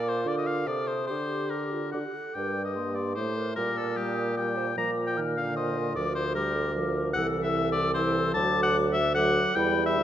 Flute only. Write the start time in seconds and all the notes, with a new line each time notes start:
Already playing: D6
0.26 D6
0.69 D#6
1.11 D6
1.50 D6
1.93 D6
2.34 D6
2.75 C6
2.94 C6
3.14 D6
3.56 D6
3.97 D#6
4.37 D6
4.77 D6
5.17 F6
5.57 C6
5.97 D6
6.36 D6
6.76 D6
7.15 E6
7.95 E6
8.34 D6
9.15 D6
9.57 B5